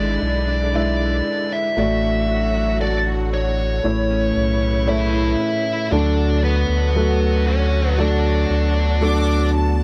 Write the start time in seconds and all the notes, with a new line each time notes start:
Already playing: G#1 D3 G#3 D4 E4 B4 D5
0.22 B1 E4
0.48 D4
0.74 G#3 E4 B4 D5 E5
1.00 E4
1.26 D4
1.52 E4 E5
1.77 A1 A2 F#3 A3 F#4 D5
2.03 D4
2.29 F#4
2.55 D4
2.80 A3 F#4 A4 D5
3.07 F#4
3.33 D4 C#5
3.59 F#4
3.83 A1 A2 C#3 E3 A3 E4 C#5
4.10 C#4
4.36 B1 E4
4.62 C#4
4.87 A3 E4 A4 C#5 E5
5.14 E4
5.40 C#4
5.66 E4
5.91 D2 D3 F#3 A3 D4 F#4 A4 D5
6.44 B3 F#4 B4
6.69 D2
6.95 F#3 A3 F#4 A4
7.47 C#4 F#4 C#5
7.89 B4
7.97 F#3 A3 B3 D4 A4 D5
8.50 D2 F#4
9.01 F#3 A3 D4 A4 D6
9.54 D4 A5